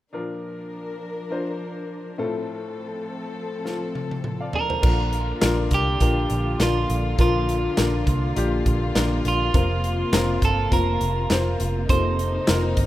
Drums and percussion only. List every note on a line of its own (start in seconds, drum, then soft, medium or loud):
3.66 snare soft
3.95 high tom soft
4.11 high tom medium
4.24 mid tom medium
4.53 floor tom medium
4.70 floor tom medium
4.83 kick loud
4.83 crash medium
5.13 closed hi-hat medium
5.42 snare loud
5.42 clap medium
5.42 closed hi-hat medium
5.71 kick medium
5.71 closed hi-hat medium
6.00 kick medium
6.00 closed hi-hat medium
6.30 closed hi-hat medium
6.60 snare medium
6.60 clap medium
6.60 closed hi-hat medium
6.90 closed hi-hat medium
7.18 kick loud
7.18 closed hi-hat medium
7.49 closed hi-hat medium
7.78 snare loud
7.78 clap medium
7.78 closed hi-hat medium
8.07 kick medium
8.07 closed hi-hat medium
8.36 closed hi-hat medium
8.66 kick medium
8.66 closed hi-hat medium
8.96 snare medium
8.96 clap medium
8.96 closed hi-hat medium
9.25 closed hi-hat medium
9.54 kick loud
9.54 closed hi-hat medium
9.84 closed hi-hat medium
10.13 snare loud
10.13 clap medium
10.13 closed hi-hat medium
10.42 kick medium
10.42 closed hi-hat medium
10.72 kick medium
10.72 closed hi-hat medium
11.01 closed hi-hat medium
11.30 snare medium
11.30 clap medium
11.30 closed hi-hat medium
11.60 closed hi-hat medium
11.89 kick loud
11.89 closed hi-hat medium
12.19 closed hi-hat medium
12.48 snare loud
12.48 clap medium
12.48 closed hi-hat medium
12.77 kick medium
12.77 closed hi-hat medium